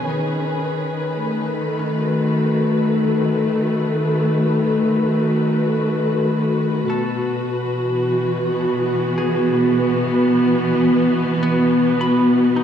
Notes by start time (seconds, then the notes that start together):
Already playing: B2 E3 C#4 G#4 B4 G#5
0.08 D#3 D#4
1.16 A3
1.79 C#4
1.94 F#4
6.90 B2 A4
7.63 E3
8.47 B3
9.18 G#4
11.43 B3
12.01 B5
12.56 D#4